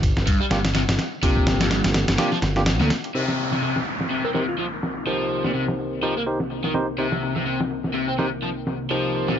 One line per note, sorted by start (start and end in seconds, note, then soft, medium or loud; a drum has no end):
0.00 0.12 G1 medium
0.00 kick loud
0.00 ride medium
0.17 0.25 G1 medium
0.17 snare soft
0.27 0.39 G2 medium
0.27 kick loud
0.27 ride medium
0.41 0.45 G3 medium
0.51 0.85 G1 medium
0.51 0.61 G2 medium
0.51 0.58 A#3 medium
0.51 0.58 D4 medium
0.51 0.58 F4 medium
0.51 0.58 G4 loud
0.51 snare loud
0.51 ride medium
0.65 snare loud
0.65 ride medium
0.75 0.81 C3 medium
0.75 snare loud
0.75 ride medium
0.88 0.97 G1 medium
0.88 snare loud
0.88 ride medium
0.99 snare medium
0.99 ride medium
1.23 1.59 C3 medium
1.23 2.16 A#3 medium
1.23 2.16 D4 medium
1.23 2.16 F4 medium
1.23 2.16 G4 medium
1.23 kick loud
1.23 ride medium
1.37 kick medium
1.47 1.81 G1 loud
1.47 snare loud
1.47 ride medium
1.60 1.68 F2 loud
1.60 snare loud
1.60 ride medium
1.71 1.81 G2 medium
1.71 snare loud
1.71 ride medium
1.84 2.04 G1 loud
1.84 snare loud
1.84 ride medium
1.94 snare loud
1.94 ride medium
2.08 2.17 G1 medium
2.08 snare loud
2.08 ride medium
2.18 2.29 C3 medium
2.18 2.30 A#3 medium
2.18 2.30 D4 medium
2.18 2.30 F4 medium
2.18 2.30 G4 loud
2.18 snare loud
2.18 ride medium
2.32 2.37 F3 loud
2.32 snare soft
2.42 2.80 G1 medium
2.42 snare medium
2.42 ride medium
2.56 2.62 A#3 medium
2.56 2.62 D4 medium
2.56 2.62 F4 medium
2.56 2.62 G4 loud
2.56 snare soft
2.66 snare loud
2.66 ride medium
2.80 2.89 D2 loud
2.80 2.88 A#2 medium
2.80 snare soft
2.90 snare medium
2.90 ride medium
3.04 ride soft
3.14 3.51 C3 medium
3.14 9.39 C3 medium
3.14 9.39 C4 medium
3.14 3.22 D#4 medium
3.14 9.39 D#4 medium
3.14 3.22 G4 medium
3.14 3.22 A#4 medium
3.14 9.39 A#4 medium
3.14 3.22 C5 medium
3.14 ride medium
3.14 downlifter medium
3.28 snare medium
3.39 ride medium
3.52 3.60 C3 medium
3.52 snare soft
3.62 3.76 C3 medium
3.62 ride medium
3.76 snare soft
3.87 ride medium
4.01 snare soft
4.11 4.23 C3 medium
4.11 ride medium
4.24 4.29 C4 medium
4.24 4.31 A#4 medium
4.34 4.45 C3 medium
4.34 4.42 D#4 medium
4.34 4.42 G4 medium
4.34 4.43 A#4 medium
4.34 4.42 A#4 medium
4.34 4.42 C5 loud
4.34 snare soft
4.49 4.55 F4 medium
4.59 4.65 F3 medium
4.59 4.68 F4 medium
4.59 ride medium
4.83 snare soft
4.83 ride medium
5.06 5.43 F3 medium
5.06 6.00 D#4 medium
5.06 6.00 G4 medium
5.06 6.00 A#4 medium
5.06 6.00 C5 medium
5.06 ride medium
5.31 ride medium
5.44 5.52 A#2 medium
5.44 snare medium
5.55 5.65 C3 medium
5.55 ride medium
5.68 snare soft
5.79 ride medium
6.02 6.13 F3 medium
6.02 6.14 D#4 medium
6.02 6.14 G4 medium
6.02 6.14 A#4 medium
6.02 6.14 C5 medium
6.02 ride medium
6.16 6.21 A#3 medium
6.16 ride soft
6.26 6.38 D#4 medium
6.26 6.38 G4 medium
6.26 6.38 A#4 medium
6.26 6.38 C5 medium
6.26 ride medium
6.40 snare soft
6.50 ride medium
6.64 6.72 D#3 medium
6.64 snare soft
6.74 6.86 D#4 medium
6.74 6.86 G4 medium
6.74 6.86 A#4 medium
6.74 6.86 C5 loud
6.74 snare soft
6.74 ride medium
6.88 ride soft
6.98 7.35 C3 medium
6.98 7.06 D#4 medium
6.98 7.06 G4 medium
6.98 7.06 A#4 medium
6.98 7.06 C5 medium
6.98 ride medium
7.12 snare soft
7.22 ride medium
7.36 7.44 C3 medium
7.36 snare soft
7.46 7.59 C3 medium
7.46 ride medium
7.61 snare soft
7.71 ride medium
7.84 snare soft
7.94 8.07 C3 medium
7.94 ride medium
8.08 8.13 C4 medium
8.18 8.29 C3 medium
8.18 8.26 D#4 medium
8.18 8.26 G4 medium
8.18 8.26 A#4 medium
8.18 8.26 C5 loud
8.18 snare soft
8.18 ride medium
8.42 8.49 F3 medium
8.42 ride medium
8.67 snare soft
8.67 ride medium
8.90 9.27 F3 medium
8.90 9.39 D#4 medium
8.90 9.39 G4 medium
8.90 9.39 A#4 medium
8.90 9.39 C5 medium
8.90 ride medium
9.15 ride medium
9.28 9.36 A#2 loud
9.28 snare medium